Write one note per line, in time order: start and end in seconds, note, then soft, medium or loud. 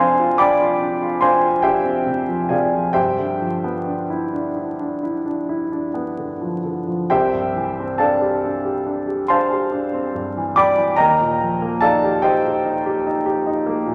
0.00 2.94 F2 medium
0.00 2.06 C3 soft
0.00 2.29 F3 soft
0.00 0.10 C4 soft
0.00 0.31 D4 soft
0.00 2.50 G#4 medium
0.00 0.36 C5 medium
0.00 0.39 D5 medium
0.00 1.22 F5 medium
0.00 1.22 G#5 medium
0.00 0.38 C6 medium
0.20 0.52 F4 soft
0.38 0.72 D4 soft
0.38 1.19 D5 medium
0.38 1.18 G5 medium
0.38 1.18 B5 medium
0.38 1.22 D6 medium
0.61 0.94 F4 soft
0.82 1.15 D4 soft
1.02 1.35 F4 soft
1.21 1.56 D4 soft
1.21 1.61 C5 medium
1.21 1.61 F5 medium
1.21 1.61 G#5 medium
1.21 1.63 C6 medium
1.42 1.76 F4 soft
1.62 1.98 D4 soft
1.62 2.48 G4 medium
1.62 2.48 C5 medium
1.62 2.47 E5 medium
1.62 2.51 G5 medium
1.84 2.20 C4 soft
2.06 2.42 C3 soft
2.29 2.65 F3 soft
2.49 2.87 C3 soft
2.49 2.93 G#4 soft
2.49 2.93 D5 soft
2.49 2.93 F5 soft
2.49 2.96 G#5 medium
2.74 2.97 F3 soft
2.93 7.05 G2 soft
2.93 6.59 G4 medium
2.93 6.59 C5 medium
2.93 6.59 E5 medium
2.93 6.62 G5 medium
3.18 3.55 D3 soft
3.41 3.78 F3 soft
3.64 4.02 B3 soft
3.87 4.25 D4 soft
4.10 4.47 E4 soft
4.33 4.70 D4 soft
4.56 4.93 E4 soft
4.80 5.16 D4 soft
5.03 5.40 E4 soft
5.25 5.62 D4 soft
5.49 5.86 E4 soft
5.72 6.09 D4 soft
5.94 6.31 B3 soft
6.18 6.55 D3 soft
6.41 6.78 F3 soft
6.65 7.01 D3 soft
6.88 7.10 F3 soft
7.10 10.93 C2 soft
7.10 7.95 G4 medium
7.10 7.95 C5 medium
7.10 7.95 E5 medium
7.10 7.99 G5 medium
7.33 7.68 G2 soft
7.56 7.91 E3 soft
7.80 8.13 C4 soft
7.98 8.34 D4 soft
7.98 9.24 A4 medium
7.98 9.25 D5 medium
7.98 9.24 F5 medium
7.98 9.28 A5 medium
8.22 8.56 G4 soft
8.44 8.77 D4 soft
8.65 8.99 G4 soft
8.86 9.20 D4 soft
9.07 9.41 G4 soft
9.28 9.63 D4 soft
9.28 10.52 C5 medium
9.28 10.52 F5 medium
9.28 10.51 A5 medium
9.28 10.55 C6 medium
9.52 9.85 G4 soft
9.72 10.05 D4 soft
9.94 10.26 C4 soft
10.15 10.47 G2 soft
10.37 10.69 E3 soft
10.56 10.90 G2 soft
10.56 10.95 D5 medium
10.56 10.95 G5 medium
10.56 10.95 B5 medium
10.56 10.97 D6 medium
10.78 10.98 E3 soft
10.96 13.95 D#2 medium
10.96 11.77 A#4 medium
10.96 11.77 D#5 medium
10.96 11.77 G5 medium
10.96 11.80 A#5 medium
11.20 11.52 A#2 soft
11.41 11.73 F3 soft
11.62 11.94 A#3 soft
11.81 12.15 D#4 soft
11.81 12.20 A4 medium
11.81 12.20 D5 medium
11.81 12.20 F5 medium
11.81 12.22 A5 medium
12.04 12.22 G4 soft
12.22 12.56 D#4 soft
12.22 12.44 G4 medium
12.22 13.95 C5 medium
12.22 13.95 D#5 medium
12.22 13.95 G5 medium
12.45 12.76 G4 soft
12.65 12.97 D#4 soft
12.86 13.17 G4 medium
13.07 13.38 D#4 medium
13.26 13.58 G4 medium
13.47 13.78 D#4 medium
13.66 13.95 A#3 medium
13.86 13.95 A#2 medium